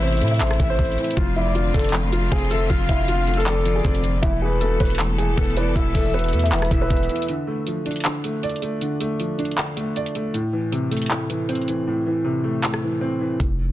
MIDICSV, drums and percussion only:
0, 0, Header, 1, 2, 480
1, 0, Start_track
1, 0, Key_signature, 0, "minor"
1, 0, Tempo, 382166
1, 1470, Time_signature, 4, 2, 24, 8
1, 17234, End_track
2, 0, Start_track
2, 0, Title_t, "Drums"
2, 31, Note_on_c, 9, 42, 44
2, 94, Note_off_c, 9, 42, 0
2, 94, Note_on_c, 9, 42, 56
2, 158, Note_off_c, 9, 42, 0
2, 158, Note_on_c, 9, 42, 67
2, 214, Note_off_c, 9, 42, 0
2, 214, Note_on_c, 9, 42, 76
2, 270, Note_off_c, 9, 42, 0
2, 270, Note_on_c, 9, 42, 77
2, 350, Note_off_c, 9, 42, 0
2, 350, Note_on_c, 9, 42, 72
2, 430, Note_off_c, 9, 42, 0
2, 430, Note_on_c, 9, 42, 68
2, 509, Note_off_c, 9, 42, 0
2, 509, Note_on_c, 9, 39, 124
2, 509, Note_on_c, 9, 42, 60
2, 590, Note_off_c, 9, 42, 0
2, 590, Note_on_c, 9, 42, 60
2, 635, Note_off_c, 9, 39, 0
2, 636, Note_on_c, 9, 37, 95
2, 670, Note_off_c, 9, 42, 0
2, 670, Note_on_c, 9, 42, 60
2, 749, Note_off_c, 9, 42, 0
2, 749, Note_on_c, 9, 36, 94
2, 749, Note_on_c, 9, 42, 89
2, 762, Note_off_c, 9, 37, 0
2, 875, Note_off_c, 9, 36, 0
2, 875, Note_off_c, 9, 42, 0
2, 989, Note_on_c, 9, 42, 57
2, 990, Note_on_c, 9, 36, 100
2, 1070, Note_off_c, 9, 42, 0
2, 1070, Note_on_c, 9, 42, 55
2, 1116, Note_off_c, 9, 36, 0
2, 1150, Note_off_c, 9, 42, 0
2, 1150, Note_on_c, 9, 42, 57
2, 1230, Note_off_c, 9, 42, 0
2, 1230, Note_on_c, 9, 42, 46
2, 1310, Note_off_c, 9, 42, 0
2, 1310, Note_on_c, 9, 42, 60
2, 1390, Note_off_c, 9, 42, 0
2, 1390, Note_on_c, 9, 42, 75
2, 1469, Note_off_c, 9, 42, 0
2, 1469, Note_on_c, 9, 36, 127
2, 1469, Note_on_c, 9, 42, 71
2, 1594, Note_off_c, 9, 42, 0
2, 1595, Note_off_c, 9, 36, 0
2, 1950, Note_on_c, 9, 42, 81
2, 2075, Note_off_c, 9, 42, 0
2, 2190, Note_on_c, 9, 42, 64
2, 2191, Note_on_c, 9, 36, 105
2, 2253, Note_off_c, 9, 42, 0
2, 2253, Note_on_c, 9, 42, 63
2, 2316, Note_off_c, 9, 36, 0
2, 2317, Note_off_c, 9, 42, 0
2, 2317, Note_on_c, 9, 42, 65
2, 2373, Note_off_c, 9, 42, 0
2, 2373, Note_on_c, 9, 42, 63
2, 2429, Note_off_c, 9, 42, 0
2, 2429, Note_on_c, 9, 39, 122
2, 2429, Note_on_c, 9, 42, 73
2, 2555, Note_off_c, 9, 39, 0
2, 2555, Note_off_c, 9, 42, 0
2, 2669, Note_on_c, 9, 42, 87
2, 2795, Note_off_c, 9, 42, 0
2, 2910, Note_on_c, 9, 42, 68
2, 2911, Note_on_c, 9, 36, 103
2, 2990, Note_off_c, 9, 42, 0
2, 2990, Note_on_c, 9, 42, 53
2, 3036, Note_off_c, 9, 36, 0
2, 3070, Note_off_c, 9, 42, 0
2, 3070, Note_on_c, 9, 42, 40
2, 3150, Note_off_c, 9, 42, 0
2, 3150, Note_on_c, 9, 42, 74
2, 3276, Note_off_c, 9, 42, 0
2, 3390, Note_on_c, 9, 36, 123
2, 3390, Note_on_c, 9, 42, 72
2, 3515, Note_off_c, 9, 42, 0
2, 3516, Note_off_c, 9, 36, 0
2, 3630, Note_on_c, 9, 36, 102
2, 3630, Note_on_c, 9, 42, 86
2, 3755, Note_off_c, 9, 42, 0
2, 3756, Note_off_c, 9, 36, 0
2, 3870, Note_on_c, 9, 42, 71
2, 3996, Note_off_c, 9, 42, 0
2, 4111, Note_on_c, 9, 42, 47
2, 4191, Note_off_c, 9, 42, 0
2, 4191, Note_on_c, 9, 42, 64
2, 4270, Note_off_c, 9, 42, 0
2, 4270, Note_on_c, 9, 42, 83
2, 4351, Note_off_c, 9, 42, 0
2, 4351, Note_on_c, 9, 39, 127
2, 4351, Note_on_c, 9, 42, 74
2, 4476, Note_off_c, 9, 39, 0
2, 4476, Note_off_c, 9, 42, 0
2, 4590, Note_on_c, 9, 42, 89
2, 4716, Note_off_c, 9, 42, 0
2, 4830, Note_on_c, 9, 42, 54
2, 4832, Note_on_c, 9, 36, 102
2, 4956, Note_off_c, 9, 42, 0
2, 4957, Note_off_c, 9, 36, 0
2, 4957, Note_on_c, 9, 42, 58
2, 5070, Note_off_c, 9, 42, 0
2, 5070, Note_on_c, 9, 42, 72
2, 5196, Note_off_c, 9, 42, 0
2, 5310, Note_on_c, 9, 42, 74
2, 5311, Note_on_c, 9, 36, 121
2, 5436, Note_off_c, 9, 36, 0
2, 5436, Note_off_c, 9, 42, 0
2, 5791, Note_on_c, 9, 42, 75
2, 5916, Note_off_c, 9, 42, 0
2, 6031, Note_on_c, 9, 42, 66
2, 6032, Note_on_c, 9, 36, 105
2, 6095, Note_off_c, 9, 42, 0
2, 6095, Note_on_c, 9, 42, 66
2, 6157, Note_off_c, 9, 36, 0
2, 6158, Note_off_c, 9, 42, 0
2, 6158, Note_on_c, 9, 42, 65
2, 6214, Note_off_c, 9, 42, 0
2, 6214, Note_on_c, 9, 42, 67
2, 6270, Note_off_c, 9, 42, 0
2, 6270, Note_on_c, 9, 39, 122
2, 6270, Note_on_c, 9, 42, 69
2, 6396, Note_off_c, 9, 39, 0
2, 6396, Note_off_c, 9, 42, 0
2, 6511, Note_on_c, 9, 42, 88
2, 6637, Note_off_c, 9, 42, 0
2, 6751, Note_on_c, 9, 42, 65
2, 6752, Note_on_c, 9, 36, 102
2, 6831, Note_off_c, 9, 42, 0
2, 6831, Note_on_c, 9, 42, 55
2, 6877, Note_off_c, 9, 36, 0
2, 6911, Note_off_c, 9, 42, 0
2, 6911, Note_on_c, 9, 42, 42
2, 6990, Note_off_c, 9, 42, 0
2, 6990, Note_on_c, 9, 42, 71
2, 7116, Note_off_c, 9, 42, 0
2, 7230, Note_on_c, 9, 36, 123
2, 7230, Note_on_c, 9, 42, 72
2, 7355, Note_off_c, 9, 42, 0
2, 7356, Note_off_c, 9, 36, 0
2, 7470, Note_on_c, 9, 36, 98
2, 7470, Note_on_c, 9, 46, 84
2, 7595, Note_off_c, 9, 46, 0
2, 7596, Note_off_c, 9, 36, 0
2, 7710, Note_on_c, 9, 42, 44
2, 7774, Note_off_c, 9, 42, 0
2, 7774, Note_on_c, 9, 42, 54
2, 7837, Note_off_c, 9, 42, 0
2, 7837, Note_on_c, 9, 42, 66
2, 7893, Note_off_c, 9, 42, 0
2, 7893, Note_on_c, 9, 42, 77
2, 7950, Note_off_c, 9, 42, 0
2, 7950, Note_on_c, 9, 42, 80
2, 8030, Note_off_c, 9, 42, 0
2, 8030, Note_on_c, 9, 42, 70
2, 8110, Note_off_c, 9, 42, 0
2, 8110, Note_on_c, 9, 42, 65
2, 8190, Note_off_c, 9, 42, 0
2, 8190, Note_on_c, 9, 39, 127
2, 8190, Note_on_c, 9, 42, 59
2, 8269, Note_off_c, 9, 42, 0
2, 8269, Note_on_c, 9, 42, 61
2, 8315, Note_off_c, 9, 39, 0
2, 8316, Note_on_c, 9, 37, 95
2, 8350, Note_off_c, 9, 42, 0
2, 8350, Note_on_c, 9, 42, 62
2, 8430, Note_off_c, 9, 42, 0
2, 8430, Note_on_c, 9, 36, 94
2, 8430, Note_on_c, 9, 42, 87
2, 8442, Note_off_c, 9, 37, 0
2, 8555, Note_off_c, 9, 36, 0
2, 8555, Note_off_c, 9, 42, 0
2, 8670, Note_on_c, 9, 42, 57
2, 8671, Note_on_c, 9, 36, 100
2, 8750, Note_off_c, 9, 42, 0
2, 8750, Note_on_c, 9, 42, 55
2, 8796, Note_off_c, 9, 36, 0
2, 8830, Note_off_c, 9, 42, 0
2, 8830, Note_on_c, 9, 42, 58
2, 8909, Note_off_c, 9, 42, 0
2, 8909, Note_on_c, 9, 42, 46
2, 8989, Note_off_c, 9, 42, 0
2, 8989, Note_on_c, 9, 42, 61
2, 9069, Note_off_c, 9, 42, 0
2, 9069, Note_on_c, 9, 42, 74
2, 9149, Note_off_c, 9, 42, 0
2, 9149, Note_on_c, 9, 42, 69
2, 9275, Note_off_c, 9, 42, 0
2, 9629, Note_on_c, 9, 42, 74
2, 9755, Note_off_c, 9, 42, 0
2, 9870, Note_on_c, 9, 42, 64
2, 9933, Note_off_c, 9, 42, 0
2, 9933, Note_on_c, 9, 42, 65
2, 9996, Note_off_c, 9, 42, 0
2, 9996, Note_on_c, 9, 42, 65
2, 10053, Note_off_c, 9, 42, 0
2, 10053, Note_on_c, 9, 42, 63
2, 10109, Note_off_c, 9, 42, 0
2, 10109, Note_on_c, 9, 39, 120
2, 10109, Note_on_c, 9, 42, 70
2, 10235, Note_off_c, 9, 39, 0
2, 10235, Note_off_c, 9, 42, 0
2, 10350, Note_on_c, 9, 42, 88
2, 10475, Note_off_c, 9, 42, 0
2, 10590, Note_on_c, 9, 42, 65
2, 10669, Note_off_c, 9, 42, 0
2, 10669, Note_on_c, 9, 42, 53
2, 10750, Note_off_c, 9, 42, 0
2, 10750, Note_on_c, 9, 42, 39
2, 10830, Note_off_c, 9, 42, 0
2, 10830, Note_on_c, 9, 42, 72
2, 10956, Note_off_c, 9, 42, 0
2, 11070, Note_on_c, 9, 42, 70
2, 11196, Note_off_c, 9, 42, 0
2, 11311, Note_on_c, 9, 42, 82
2, 11436, Note_off_c, 9, 42, 0
2, 11551, Note_on_c, 9, 42, 70
2, 11677, Note_off_c, 9, 42, 0
2, 11791, Note_on_c, 9, 42, 47
2, 11871, Note_off_c, 9, 42, 0
2, 11871, Note_on_c, 9, 42, 62
2, 11951, Note_off_c, 9, 42, 0
2, 11951, Note_on_c, 9, 42, 80
2, 12030, Note_off_c, 9, 42, 0
2, 12030, Note_on_c, 9, 39, 122
2, 12030, Note_on_c, 9, 42, 70
2, 12156, Note_off_c, 9, 39, 0
2, 12156, Note_off_c, 9, 42, 0
2, 12271, Note_on_c, 9, 42, 86
2, 12396, Note_off_c, 9, 42, 0
2, 12511, Note_on_c, 9, 42, 55
2, 12637, Note_off_c, 9, 42, 0
2, 12638, Note_on_c, 9, 42, 59
2, 12751, Note_off_c, 9, 42, 0
2, 12751, Note_on_c, 9, 42, 72
2, 12876, Note_off_c, 9, 42, 0
2, 12990, Note_on_c, 9, 42, 67
2, 13116, Note_off_c, 9, 42, 0
2, 13470, Note_on_c, 9, 42, 74
2, 13596, Note_off_c, 9, 42, 0
2, 13710, Note_on_c, 9, 42, 63
2, 13774, Note_off_c, 9, 42, 0
2, 13774, Note_on_c, 9, 42, 64
2, 13837, Note_off_c, 9, 42, 0
2, 13837, Note_on_c, 9, 42, 65
2, 13894, Note_off_c, 9, 42, 0
2, 13894, Note_on_c, 9, 42, 63
2, 13951, Note_off_c, 9, 42, 0
2, 13951, Note_on_c, 9, 39, 121
2, 13951, Note_on_c, 9, 42, 72
2, 14076, Note_off_c, 9, 39, 0
2, 14076, Note_off_c, 9, 42, 0
2, 14191, Note_on_c, 9, 42, 88
2, 14316, Note_off_c, 9, 42, 0
2, 14431, Note_on_c, 9, 42, 66
2, 14510, Note_off_c, 9, 42, 0
2, 14510, Note_on_c, 9, 42, 53
2, 14590, Note_off_c, 9, 42, 0
2, 14590, Note_on_c, 9, 42, 40
2, 14670, Note_off_c, 9, 42, 0
2, 14670, Note_on_c, 9, 42, 71
2, 14795, Note_off_c, 9, 42, 0
2, 15870, Note_on_c, 9, 39, 123
2, 15996, Note_off_c, 9, 39, 0
2, 15997, Note_on_c, 9, 37, 94
2, 16122, Note_off_c, 9, 37, 0
2, 16830, Note_on_c, 9, 36, 121
2, 16830, Note_on_c, 9, 42, 69
2, 16956, Note_off_c, 9, 36, 0
2, 16956, Note_off_c, 9, 42, 0
2, 17234, End_track
0, 0, End_of_file